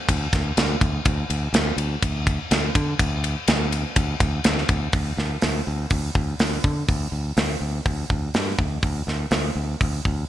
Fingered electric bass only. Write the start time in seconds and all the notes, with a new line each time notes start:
0.09 D2
0.33 D2
0.57 D2
0.81 D2
1.05 D2
1.30 D2
1.53 D2
1.77 D2
2.03 D2
2.51 D2
2.75 D3
3.00 D2
3.48 D2
3.96 D2
4.21 D2
4.45 D2
4.69 D2
4.94 D2
5.17 D2
5.43 D2
5.67 D2
5.91 D2
6.15 D2
6.40 D2
6.64 D3
6.88 D2
7.12 D2
7.37 D2
7.61 D2
7.85 D2
8.10 D2
8.35 G2
8.59 D2
8.83 D2
9.07 D2
9.31 D2
9.55 D2
9.81 D2
10.06 D2